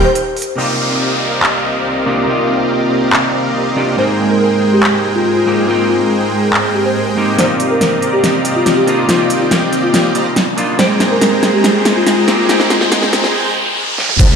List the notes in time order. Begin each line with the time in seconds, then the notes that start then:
0.05 C5
0.15 C5, closed hi-hat
0.37 open hi-hat
0.42 closed hi-hat
0.56 C2 C3 D#3 A#3 C4 D#4 F4 G4 A#4 D5 D#5 F5, downlifter
0.60 G4
1.43 clap
2.06 C3 A#3 D4 D#4 F4 G4
2.26 C3 A#3 D#4 F4 G4
3.13 clap
3.76 C3 A#3 D4 D#4 F4 G4
3.96 G#2 G#3 A#3 C4 D#4 G#4 A#4 C5 G5
4.00 G5
4.30 A#4
4.41 A#4
4.73 G4
4.83 clap
5.15 F4
5.26 F4
5.36 F4
5.46 G#2 A#3 C4 D#4 G4
5.58 F4
5.67 G#2 A#3 C4 D#4 F4 G5
5.89 F4
6.53 clap
6.75 G4
6.85 C5
6.96 C5
7.16 G#2 A#3 C4 D#4 G4
7.36 C3 D#3 A#3 C4 D#4 F4 G4 C5 D5 D#5 F5 A#5, snare, closed hi-hat, riser
7.60 closed hi-hat
7.70 A#4
7.81 A#4, snare, closed hi-hat
8.02 closed hi-hat
8.13 G4
8.24 snare, closed hi-hat
8.45 closed hi-hat
8.56 F4
8.66 C4 F4 G4 D5 D#5 F5 A#5, snare, closed hi-hat
8.77 G4
8.86 A#3 D4 D#4 F4, closed hi-hat
9.07 A#3 C4 D#4 F4 G4 D5 D#5 F5 G5, snare, closed hi-hat
9.11 F4
9.30 closed hi-hat
9.41 F4
9.51 snare, closed hi-hat
9.73 closed hi-hat
9.83 F4
9.94 F4, snare, closed hi-hat
10.15 C4 G4 D5 D#5 F5 A#5, closed hi-hat
10.36 snare, closed hi-hat
10.57 A#3 D4 D#4 F4, closed hi-hat
10.77 G#2 G#3 A#3 C4 D#4 G#4 C5 G5 A#5, snare, closed hi-hat
10.81 G5
11.00 snare, closed hi-hat
11.11 A#4
11.21 A#4, snare, closed hi-hat
11.43 snare, closed hi-hat
11.53 G4
11.64 snare, closed hi-hat
11.85 snare, closed hi-hat
11.96 F4
12.07 G#3 F4 G#4 C5 G5 A#5, snare, closed hi-hat
12.17 F4
12.27 A#3 C4 D#4 G4, snare, closed hi-hat
12.38 F4
12.47 G#3 A#3 C4 D#4 F4 G#4 C5 G5 A#5, snare, closed hi-hat
12.51 G5
12.60 snare
12.70 F4, snare, closed hi-hat
12.81 snare
12.92 snare, closed hi-hat
13.02 snare
13.13 snare, closed hi-hat
13.24 snare
13.98 snare
14.09 mid tom
14.19 C2 C3 C4 D#4 G4 C5 D5 D#5 F5 A#5, kick, closed hi-hat, crash, downlifter